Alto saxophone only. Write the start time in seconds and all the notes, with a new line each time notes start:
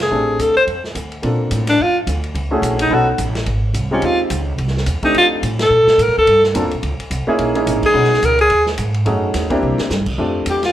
0.02 G#4
0.41 A4
0.57 C5
1.69 D4
1.83 F4
2.82 D#4
2.94 F#4
3.92 C#4
4.05 F4
5.05 D#4
5.18 F4
5.62 A4
6.02 A#4
6.18 A4
7.86 G#4
8.25 A#4
8.41 G#4
10.50 G4
10.66 F4